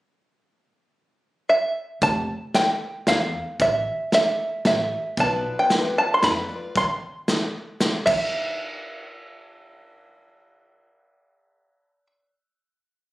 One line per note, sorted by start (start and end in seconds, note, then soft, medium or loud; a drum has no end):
1.49 2.02 E5 medium
2.02 2.26 F1 medium
2.02 2.55 A5 medium
2.02 kick loud
2.02 closed hi-hat medium
2.54 3.08 G5 medium
2.54 snare medium
2.54 closed hi-hat medium
3.07 3.32 E2 medium
3.07 3.61 F5 medium
3.07 snare medium
3.07 closed hi-hat medium
3.60 3.84 A1 medium
3.60 4.10 E5 medium
3.60 kick loud
3.60 closed hi-hat medium
4.12 4.66 E5 medium
4.12 snare medium
4.12 closed hi-hat soft
4.65 4.90 A1 medium
4.65 5.15 E5 medium
4.65 snare medium
4.65 closed hi-hat medium
5.17 5.42 B1 medium
5.17 5.69 B3 medium
5.17 5.69 F4 medium
5.17 5.70 B4 medium
5.17 5.71 D5 medium
5.17 5.59 A5 medium
5.17 kick loud
5.17 closed hi-hat medium
5.59 5.95 G5 medium
5.70 6.21 B3 medium
5.70 6.22 F4 medium
5.70 6.22 B4 medium
5.70 6.23 D5 medium
5.70 snare medium
5.70 closed hi-hat soft
5.98 6.14 A5 medium
6.14 6.22 C6 medium
6.22 6.47 F2 medium
6.22 6.49 B3 medium
6.22 6.49 F4 medium
6.22 6.48 B4 medium
6.22 6.47 D5 medium
6.22 6.77 B5 medium
6.22 snare medium
6.22 closed hi-hat medium
6.48 6.76 F4 soft
6.48 6.76 B4 soft
6.48 6.75 D5 soft
6.76 8.04 C6 medium
6.76 kick loud
6.76 closed hi-hat medium
7.28 snare medium
7.28 closed hi-hat medium
7.80 snare medium
7.80 closed hi-hat medium
8.06 12.07 E5 medium
8.06 kick loud
8.06 crash medium